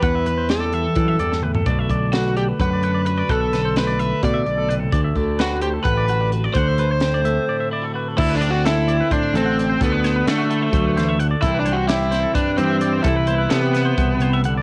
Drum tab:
CC |--------------|--------------|--------------|--------------|
HH |x-x-x-x-x-x---|x-x-x-x-x-x-x-|x-x-x-x-x-x-x-|x-x-x-x-x-x-x-|
SD |----o------o--|----o---------|--o-o---------|----o---------|
T2 |------------o-|--------------|--------------|--------------|
FT |-------------o|--------------|--------------|--------------|
BD |o-------o-----|o-o-----o-----|o-------o-----|o-o-----o-----|

CC |--------------|x-------------|--------------|--------------|
HH |x-x-x-x-------|--x-x-x-x-x-x-|x-x-x-x-x-x-x-|x-x-x-x-x-x-x-|
SD |----o---------|----o---------|--o-o-----o---|----o-o-------|
T2 |--------------|--------------|--------------|--------------|
FT |--------------|--------------|--------------|--------------|
BD |o-------------|o-------o-----|o-------o-----|o-------o-----|

CC |--------------|
HH |x-x-x-x-x-x-x-|
SD |----o-o-------|
T2 |--------------|
FT |--------------|
BD |o-------o-----|